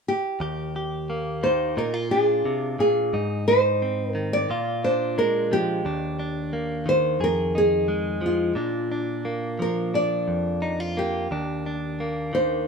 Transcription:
0.08 1.40 G4 medium
0.40 1.77 D#2 medium
0.40 0.75 G4 soft
0.76 1.74 G4 soft
1.10 1.74 A#3 soft
1.43 1.77 D#3 soft
1.43 1.78 C5 medium
1.77 2.45 A#2 soft
1.77 1.94 D#4 soft
1.77 2.11 A#4 medium
1.94 3.13 F4 soft
2.11 3.09 D4 soft
2.11 2.79 G#4 medium
2.45 2.79 C3 soft
2.79 3.13 A#2 soft
2.79 3.47 G#4 medium
3.13 4.45 G#2 medium
3.13 3.46 D#4 soft
3.48 4.46 D#4 soft
3.48 4.11 C5 medium
3.82 4.46 C4 soft
4.11 4.33 A#4 medium
4.15 4.49 D#3 soft
4.33 4.84 D5 medium
4.50 5.85 A#2 medium
4.50 5.81 F4 soft
4.84 5.81 D4 soft
4.84 5.18 C5 medium
5.18 5.85 G#3 soft
5.18 5.53 A#4 medium
5.51 5.81 F3 soft
5.51 6.91 G4 medium
5.85 7.20 D#2 medium
5.85 6.18 D4 soft
6.19 7.17 D4 soft
6.53 7.17 A#3 soft
6.86 8.21 D#3 soft
6.86 7.23 C5 medium
7.20 8.52 F2 medium
7.20 8.53 G#4 soft
7.20 7.57 A#4 medium
7.55 8.53 D#4 soft
7.55 8.25 G#4 medium
7.88 8.56 G#3 soft
8.21 8.52 F3 soft
8.26 9.23 F4 medium
8.55 10.27 A#2 medium
8.55 8.91 D4 soft
8.92 9.94 D4 soft
9.25 10.96 A#3 soft
9.59 11.27 F3 soft
9.59 9.95 A#4 medium
9.94 11.27 D4 soft
9.94 11.01 D5 medium
10.28 11.27 F2 soft
10.62 10.80 D#4 soft
10.80 11.31 F4 soft
10.97 11.27 A#3 soft
10.97 12.39 G4 medium
11.31 12.68 D#2 medium
11.31 11.65 D4 soft
11.66 12.65 D4 soft
12.00 12.64 A#3 soft
12.33 12.68 D#3 soft
12.33 12.66 C5 medium

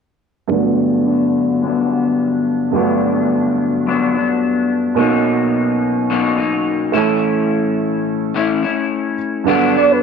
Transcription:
0.48 2.69 G2 medium
0.48 1.06 G2 medium
0.48 1.04 D3 medium
0.48 1.06 F#3 medium
0.48 2.70 A3 medium
0.48 2.70 B3 soft
0.48 1.07 B3 medium
0.48 2.71 D4 medium
0.52 1.07 D4 medium
0.52 2.72 F#4 medium
1.06 1.62 D3 medium
1.06 1.63 F#3 soft
1.06 1.65 B3 soft
1.06 1.63 D4 medium
1.61 2.72 G2 medium
1.61 2.74 D3 medium
1.61 2.76 F#3 medium
1.61 2.77 B3 medium
1.66 2.76 D4 medium
2.71 4.93 G2 medium
2.71 3.85 G2 medium
2.71 3.86 D3 medium
2.71 4.94 A3 medium
2.71 4.95 B3 medium
2.71 4.95 D4 medium
2.76 3.87 F#3 medium
2.76 3.87 B3 medium
2.76 3.87 D4 medium
2.76 4.96 F#4 medium
3.86 4.14 G2 medium
3.86 4.15 D3 medium
3.86 4.15 F#3 medium
3.86 4.15 B3 medium
3.86 4.13 D4 medium
4.14 4.98 F#3 soft
4.14 5.00 B3 soft
4.14 4.99 D4 medium
4.95 6.89 B2 medium
4.95 6.09 B2 medium
4.95 6.09 F#3 medium
4.95 6.90 A#3 medium
4.95 6.90 C#4 medium
4.95 6.91 D#4 medium
5.00 6.10 A#3 medium
5.00 6.11 D#4 medium
5.00 6.92 F#4 medium
6.10 6.38 B2 medium
6.10 6.39 F#3 medium
6.10 6.39 A#3 medium
6.10 6.37 D#4 medium
6.38 6.95 F#3 soft
6.38 6.94 A#3 soft
6.38 6.93 D#4 medium
6.92 9.14 A3 medium
6.92 8.35 A3 medium
6.92 9.15 C#4 medium
6.92 8.35 C#4 medium
6.92 8.34 E4 medium
6.92 9.16 E4 medium
6.96 8.33 A2 medium
6.96 8.34 E3 medium
6.96 9.17 A4 medium
8.34 8.63 A2 medium
8.34 8.63 E3 medium
8.34 8.64 A3 medium
8.34 8.63 C#4 medium
8.34 8.61 E4 medium
8.63 9.48 A3 soft
8.63 9.48 C#4 soft
8.63 9.47 E4 medium
9.44 10.03 G2 medium
9.44 9.75 G2 medium
9.44 9.76 D3 medium
9.44 10.03 B3 medium
9.44 10.03 D4 medium
9.44 10.03 F#5 medium
9.48 9.76 F#3 medium
9.48 9.76 B3 medium
9.48 9.74 D4 loud
9.48 10.03 A4 medium
9.76 10.03 F#3 soft
9.76 10.03 B3 soft
9.76 10.03 D4 soft
9.76 9.93 D5 loud
9.91 10.03 B4 loud

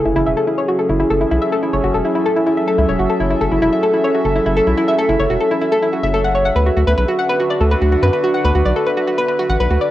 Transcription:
0.00 6.56 F#3 medium
0.00 6.56 C#4 medium
0.00 7.14 G#4 medium
0.00 0.53 B4 medium
0.05 0.13 F#1 medium
0.05 0.11 E4 medium
0.16 0.23 F#1 loud
0.16 0.21 E4 loud
0.24 0.34 E1 medium
0.24 7.83 A4 medium
0.24 9.91 E5 medium
0.24 0.32 E5 medium
0.37 0.45 A4 loud
0.47 0.53 E4 medium
0.58 0.61 C#5 medium
0.68 0.74 F#4 medium
0.79 0.82 A4 medium
0.89 1.04 F#1 loud
0.89 0.95 E4 medium
1.00 1.05 E4 medium
1.10 1.25 F#1 medium
1.10 1.16 A4 loud
1.21 1.26 E4 medium
1.31 1.39 B1 loud
1.31 1.37 E4 loud
1.42 1.47 E5 medium
1.52 1.60 A4 loud
1.63 1.68 E4 medium
1.73 1.81 F#1 medium
1.73 1.76 C#5 medium
1.84 1.91 F#1 loud
1.84 1.89 F#4 medium
1.94 2.02 E1 medium
1.94 1.97 A4 medium
2.05 2.10 E4 medium
2.15 2.20 E4 medium
2.26 2.31 A4 loud
2.36 2.41 E4 medium
2.46 2.52 E4 loud
2.57 2.62 E5 medium
2.68 2.76 A4 loud
2.78 2.85 C#2 loud
2.78 2.83 E4 medium
2.89 2.96 E1 medium
2.89 2.92 C#5 medium
2.99 3.06 F#1 loud
2.99 3.04 F#4 medium
3.09 3.13 A4 medium
3.20 3.35 F#1 loud
3.20 3.25 E4 medium
3.30 3.36 E4 medium
3.41 3.48 F#1 medium
3.41 3.46 A4 loud
3.51 3.59 F#1 loud
3.51 3.57 E4 medium
3.62 3.69 E1 medium
3.62 3.67 E4 loud
3.72 3.78 E5 medium
3.83 3.91 A4 loud
3.93 3.99 E4 medium
4.04 4.07 C#5 medium
4.14 4.20 F#4 medium
4.25 4.40 F#1 loud
4.25 4.28 A4 medium
4.35 4.41 E4 medium
4.46 4.61 F#1 medium
4.46 4.51 E4 medium
4.56 4.62 A4 loud
4.67 4.74 B1 loud
4.67 4.72 E4 medium
4.77 4.83 E4 loud
4.88 4.93 E5 medium
4.98 5.06 A4 loud
5.09 5.16 F#1 medium
5.09 5.14 E4 medium
5.19 5.27 F#1 loud
5.19 5.23 C#5 medium
5.30 5.37 E1 medium
5.30 5.35 F#4 medium
5.40 5.44 A4 medium
5.51 5.56 E4 medium
5.61 5.67 E4 medium
5.72 5.77 A4 loud
5.82 5.88 E4 medium
5.93 5.98 F#4 medium
6.03 6.51 F#1 medium
6.03 6.09 E5 medium
6.14 6.22 A4 loud
6.24 6.30 F#5 medium
6.35 6.43 C#5 medium
6.45 6.53 F#5 medium
6.56 6.70 D2 medium
6.56 9.91 D3 medium
6.56 6.59 B4 medium
6.66 6.72 F#4 medium
6.66 9.91 B4 medium
6.71 9.91 D4 medium
6.71 9.91 F#4 medium
6.77 6.84 D2 medium
6.77 6.82 F#4 medium
6.87 6.94 D2 loud
6.87 6.93 B4 loud
6.98 7.05 B1 medium
6.98 7.03 B4 medium
7.08 7.13 F#4 loud
7.19 7.24 F#5 medium
7.29 7.37 B4 loud
7.40 7.45 F#4 medium
7.50 7.53 D5 medium
7.61 7.75 D2 loud
7.61 7.66 A4 medium
7.71 7.74 B4 medium
7.82 7.96 D2 medium
7.82 7.87 F#4 medium
7.92 7.97 F#4 medium
8.03 8.10 F#2 loud
8.03 8.08 B4 loud
8.13 8.18 B4 medium
8.24 8.29 F#4 loud
8.34 8.39 F#5 medium
8.44 8.52 D2 medium
8.44 8.52 B4 loud
8.55 8.62 D2 loud
8.55 8.60 F#4 medium
8.65 8.73 B1 medium
8.65 8.69 D5 medium
8.76 8.81 A4 medium
8.86 8.90 B4 medium
8.97 9.02 F#4 medium
9.07 9.13 F#4 medium
9.18 9.23 B4 loud
9.28 9.34 B4 medium
9.39 9.44 F#4 loud
9.49 9.57 A1 loud
9.49 9.55 F#5 medium
9.60 9.67 B1 medium
9.60 9.68 B4 loud
9.70 9.78 D2 loud
9.70 9.76 F#4 medium
9.81 9.84 D5 medium

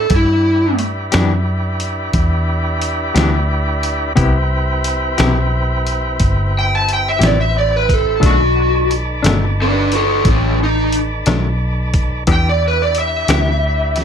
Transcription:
0.00 0.12 A4 medium
0.09 1.09 G2 medium
0.09 4.13 D4 medium
0.09 4.13 E4 medium
0.09 4.12 G4 medium
0.09 4.13 B4 medium
0.09 kick loud
0.09 closed hi-hat medium
0.16 0.79 E4 medium
0.79 closed hi-hat medium
1.12 2.12 F#2 loud
1.12 1.34 E3 medium
1.12 1.33 B3 medium
1.12 1.33 D4 medium
1.12 1.33 G4 medium
1.12 snare loud
1.12 closed hi-hat medium
1.80 closed hi-hat medium
2.13 3.12 E2 medium
2.13 kick medium
2.13 closed hi-hat medium
2.82 closed hi-hat medium
3.14 4.14 D2 medium
3.14 3.36 E3 medium
3.14 3.36 B3 medium
3.14 3.36 D4 medium
3.14 3.36 G4 medium
3.14 snare loud
3.14 closed hi-hat medium
3.83 closed hi-hat medium
4.16 5.16 C2 medium
4.16 4.37 C3 medium
4.16 4.37 B3 medium
4.16 8.18 C4 medium
4.16 4.37 E4 medium
4.16 8.19 E4 medium
4.16 8.18 G4 medium
4.16 4.37 G4 medium
4.16 8.19 B4 medium
4.16 kick loud
4.16 closed hi-hat medium
4.84 closed hi-hat medium
5.18 6.18 B1 medium
5.18 5.40 C3 medium
5.18 5.39 B3 medium
5.18 5.39 E4 medium
5.18 5.39 G4 medium
5.18 snare loud
5.18 closed hi-hat medium
5.87 closed hi-hat medium
6.20 7.19 G1 medium
6.20 kick medium
6.20 closed hi-hat medium
6.59 6.75 G5 medium
6.75 6.89 A5 medium
6.89 closed hi-hat medium
6.93 7.07 G5 medium
7.08 7.25 E5 medium
7.19 8.19 A1 medium
7.19 7.42 C3 medium
7.19 7.42 B3 medium
7.19 7.41 E4 medium
7.19 7.41 G4 medium
7.19 closed hi-hat medium
7.23 7.40 D5 medium
7.23 snare loud
7.41 7.56 E5 medium
7.58 7.73 D5 medium
7.76 7.93 B4 medium
7.89 kick medium
7.89 closed hi-hat medium
7.93 8.24 A4 medium
8.20 9.21 B1 medium
8.20 8.42 B2 medium
8.20 8.42 D#3 medium
8.20 12.23 D#3 medium
8.20 8.42 A3 medium
8.20 8.43 D4 medium
8.20 12.24 A4 medium
8.20 12.24 B4 medium
8.20 12.24 D5 medium
8.20 kick loud
8.20 closed hi-hat medium
8.26 8.90 F#4 medium
8.91 closed hi-hat medium
9.23 10.22 G1 medium
9.23 9.45 B2 medium
9.23 9.44 D#3 medium
9.23 9.44 A3 medium
9.23 9.44 D4 medium
9.23 snare medium
9.23 closed hi-hat medium
9.62 9.94 D4 medium
9.62 9.93 B4 medium
9.92 10.25 F#4 medium
9.92 closed hi-hat medium
9.96 10.27 A4 medium
10.25 11.23 A1 medium
10.25 10.58 B3 medium
10.25 10.60 D#4 medium
10.25 kick medium
10.25 closed hi-hat medium
10.64 10.94 D#4 loud
10.92 closed hi-hat medium
11.26 12.25 B1 loud
11.26 11.47 B2 medium
11.26 11.47 D#3 medium
11.26 11.47 A3 medium
11.26 11.47 D4 medium
11.26 snare loud
11.26 closed hi-hat medium
11.94 kick medium
11.94 closed hi-hat medium
12.27 13.26 E2 medium
12.27 12.48 E3 medium
12.27 12.48 B3 medium
12.27 14.04 D4 medium
12.27 12.48 D4 medium
12.27 14.04 E4 medium
12.27 14.04 G4 medium
12.27 12.49 G4 medium
12.27 14.04 B4 medium
12.27 kick loud
12.27 closed hi-hat medium
12.33 12.46 G5 loud
12.49 12.63 D5 medium
12.68 12.81 B4 medium
12.82 12.96 D5 medium
12.95 closed hi-hat medium
12.99 14.04 E5 medium
13.28 14.04 D2 medium
13.28 13.50 E3 soft
13.28 13.50 B3 medium
13.28 13.49 D4 medium
13.28 13.49 G4 medium
13.28 snare loud
13.28 closed hi-hat medium
13.96 snare soft
13.96 closed hi-hat medium

